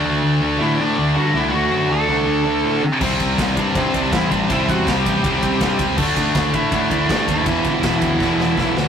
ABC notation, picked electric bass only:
X:1
M:4/4
L:1/8
Q:1/4=162
K:Dmix
V:1 name="Picked electric bass" clef=bass
D,, D,, D,, A,, A,, D,, G,, C,, | D,, F,, D,, C,, D,, D,, A,, C, | C,, C,, C,, G,, G,, C,, E,, A,,, | C,, E,, C,, A,,, C,, C,, G,, ^C,, |
D,, D,, D,, A,, A,, D,, G,, ^D,, | E,,, G,,, E,,, D,, E,,, E,,, B,,, D,, |]